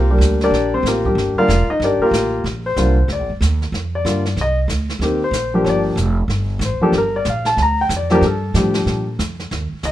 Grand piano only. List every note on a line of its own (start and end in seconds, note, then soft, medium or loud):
0.11 0.51 G3 soft
0.11 0.51 A#3 medium
0.11 0.42 D4 soft
0.11 0.42 G4 medium
0.44 0.72 D4 medium
0.44 0.72 G4 medium
0.44 0.72 A#4 medium
0.44 0.72 D5 medium
0.74 0.85 C4 medium
0.74 0.85 C5 medium
0.87 1.05 A#3 medium
0.87 1.06 F4 medium
0.87 1.05 G4 medium
0.87 1.05 A#4 medium
1.06 1.37 G3 soft
1.06 1.38 A#3 soft
1.06 1.47 D4 soft
1.06 1.47 G4 medium
1.38 1.49 D3 medium
1.38 1.49 G3 medium
1.38 1.49 A#3 medium
1.38 1.67 F4 medium
1.38 1.67 A#4 medium
1.38 1.68 D5 medium
1.38 1.67 F5 loud
1.70 1.81 D#4 medium
1.70 1.81 D#5 medium
1.84 2.02 D4 medium
1.84 2.01 G4 medium
1.84 2.00 A#4 medium
1.84 2.02 D5 medium
2.02 2.43 A#3 medium
2.02 2.43 F4 medium
2.02 2.43 G4 medium
2.02 2.42 A#4 medium
2.66 3.07 C5 medium
2.78 2.96 D3 medium
2.78 2.95 G3 medium
2.78 2.96 A#3 medium
2.78 2.96 F4 medium
3.13 3.30 D5 medium
3.95 4.35 D5 medium
4.05 4.23 D3 medium
4.05 4.23 G3 soft
4.05 4.24 A#3 soft
4.05 4.23 F4 medium
4.41 4.59 D#5 medium
5.02 5.20 D#3 medium
5.02 5.20 A#3 medium
5.02 5.20 C4 soft
5.02 5.20 G4 medium
5.24 5.64 C5 medium
5.54 5.96 F3 medium
5.54 5.96 A#3 medium
5.54 5.96 D4 medium
5.54 5.96 G4 medium
5.65 5.67 C#5 medium
5.69 5.80 D5 medium
6.65 6.83 C5 medium
6.81 6.93 F3 medium
6.81 6.93 A#3 medium
6.81 6.93 D4 medium
6.81 6.93 G4 medium
6.81 6.94 A4 medium
6.98 7.15 A#4 medium
7.16 7.27 D5 medium
7.29 7.47 F5 medium
7.46 7.57 A5 medium
7.58 7.60 A5 medium
7.63 7.80 A#5 medium
7.81 7.91 G5 medium
7.97 8.13 D5 medium
8.11 8.21 F3 medium
8.11 8.21 A#3 medium
8.11 8.21 D4 medium
8.11 8.22 G4 medium
8.15 8.24 A#4 medium
8.26 9.16 A4 medium
8.55 9.03 F3 medium
8.55 9.03 G3 soft
8.55 9.03 D4 soft
8.55 9.03 G4 medium
9.85 9.92 D#5 medium